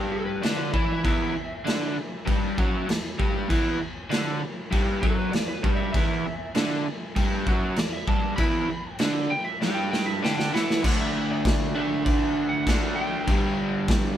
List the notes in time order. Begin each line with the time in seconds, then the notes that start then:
Already playing: G2 G3
0.12 A4
0.26 B4
0.42 D3 D4 D5, snare, crash
0.57 B4
0.73 E3 E4 D5, kick
0.93 E5
1.04 E2 E3, kick, crash
1.08 E5
1.34 E2
1.65 D3 D4, snare, crash
1.96 muted overdriven electric guitar stroke
2.25 G2 G3, kick, crash
2.58 F#2 F#3, kick
2.88 E2, snare, crash
3.18 G2 G3, kick
3.49 E2 E3, kick, crash
3.79 E2
4.10 D3 D4, snare, crash
4.42 muted overdriven electric guitar stroke
4.71 G2 G3, kick, crash
5.02 F#2 F#3 A4, kick
5.19 B4
5.32 E2 D5, snare, crash
5.48 B4
5.63 G2 G3 D5, kick
5.76 E5
5.93 E2 E3 E5, kick, crash
6.26 E2
6.55 D3 D4, snare, crash
6.86 muted overdriven electric guitar stroke
7.16 G2 G3, kick, crash
7.47 F#2 F#3, kick
7.76 E2 D5, snare, crash
7.92 E5
8.08 G2 G3 A5, kick
8.36 E2 E3 B5, kick, crash
8.69 E2
8.99 D3 D4, snare, crash
9.30 G5, muted overdriven electric guitar stroke
9.45 E5
9.61 G2 G3 D5, snare
9.74 G5
9.91 G5, snare
10.06 E5
10.22 D3 D4 D5 G5, snare
10.38 G5, snare
10.52 E3 E4 D5 F#5, snare
10.70 snare
10.83 D3 A3, kick, crash
10.87 D4
11.01 E5
11.31 D5
11.45 kick, snare, crash
11.75 A3 D4 E5
11.79 D3
12.05 D5, kick, crash
12.49 F#5
12.66 D3 A3, kick, snare, crash
12.71 D4
12.96 G5
13.27 G2 D3, kick, crash
13.31 G3
13.74 F#5
13.88 kick, snare, crash